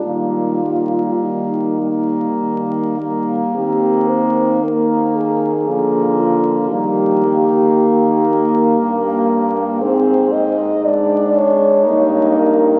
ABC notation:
X:1
M:3/4
L:1/16
Q:1/4=58
K:Eb
V:1 name="French horn"
F4 E4 z4 | G2 c2 B2 A4 F2 | G8- G2 z2 | A2 e2 d2 _d4 B2 |]
V:2 name="French horn"
B,2 B,4 B,4 B,2 | B,4 B,4 B,4 | B,12 | C3 z D4 E4 |]
V:3 name="French horn" clef=bass
G,2 G,4 G,4 G,2 | C4 B,4 F,4 | G,2 B,8- B,2 | C3 z A,4 B,4 |]
V:4 name="French horn" clef=bass
E,4 E,4 E,4 | E,8 D,4 | E,8 G,,4 | A,,6- A,, z G,,4 |]